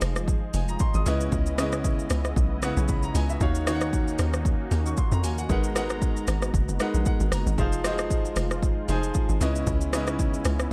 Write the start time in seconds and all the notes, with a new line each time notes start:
Already playing: F3 G#3 D#4 G#4 C5 D#5 F5 G#5
0.01 F1, cross-stick, open hi-hat, shaker
0.16 cross-stick, shaker
0.28 kick, shaker
0.54 F1 G#5, open hi-hat, shaker
0.68 A#5, shaker
0.79 C6, kick, shaker
0.94 G#1 D#6, shaker
1.06 C#2 C#3 B3 C#4 E4 B4 D#5, open hi-hat, shaker
1.21 shaker
1.32 C#2, kick, shaker
1.46 shaker
1.58 C#3 C#4 E4 B4 D#5, cross-stick, open hi-hat, shaker
1.72 cross-stick, shaker
1.84 kick, shaker
1.99 shaker
2.10 C#2, cross-stick, open hi-hat, shaker
2.25 cross-stick, shaker
2.36 B1, kick, shaker
2.62 C#3 C#4 E4 B4 F#5, cross-stick, open hi-hat, shaker
2.77 B1, shaker
2.88 B5, kick, shaker
3.03 A#5, shaker
3.15 C#2 G#5, open hi-hat, shaker
3.29 E5, shaker
3.41 D#2 D#3 A#3 C#4 D#4 F#4 C#5 F5, kick, shaker
3.55 shaker
3.67 D#3 D#4 F#4 C#5 F5, cross-stick, open hi-hat, shaker
3.75 F#5
3.81 cross-stick, shaker
3.93 kick, shaker
4.08 shaker
4.19 D#2, cross-stick, open hi-hat, shaker
4.33 cross-stick, shaker
4.45 kick, shaker
4.71 D#2, open hi-hat, shaker
4.86 C#6, shaker
4.97 C6, kick, shaker
5.12 F2 A#5, shaker
5.23 D#2 G#5, open hi-hat, shaker
5.38 F#5, shaker
5.49 G#1 G#3 B3 D#4 A#4 B4 F#5 A#5, kick, shaker
5.64 shaker
5.75 G#3 D#4 A#4 B4 F#5, cross-stick, open hi-hat, shaker
5.90 cross-stick, shaker
6.02 kick, shaker
6.17 shaker
6.27 G#1, cross-stick, open hi-hat, shaker
6.42 cross-stick, shaker
6.54 F#1, kick, shaker
6.68 F#1, shaker
6.80 G#3 D#4 A#4 B4 F#5, cross-stick, open hi-hat, shaker
6.94 A#1, shaker
7.06 F#5, kick, shaker
7.20 G#1, shaker
7.32 F#1 A#5, cross-stick, open hi-hat, shaker
7.46 G#1, shaker
7.58 F1 F3 D#4 F4 G#4 C5 F5, kick, shaker
7.72 shaker
7.84 F3 D#4 F#4 C5 D#5, cross-stick, open hi-hat, shaker
7.91 G#4
7.98 cross-stick, shaker
8.10 kick, shaker
8.25 shaker
8.36 F1, cross-stick, open hi-hat, shaker
8.51 cross-stick, shaker
8.63 kick, shaker
8.88 F1 F3 D#4 G#4 C5 G#5, open hi-hat, shaker
9.03 shaker
9.14 kick, shaker
9.29 G#1, shaker
9.40 C#2 C#3 B3 C#4 E4 B4 D#5, open hi-hat, shaker
9.56 shaker
9.67 C#2, kick, shaker
9.81 shaker
9.93 C#3 C#4 D#4 B4 D#5, cross-stick, open hi-hat, shaker
10.00 E4
10.07 cross-stick, shaker
10.19 kick, shaker
10.34 shaker
10.45 C#2, cross-stick, open hi-hat, shaker
10.59 cross-stick, shaker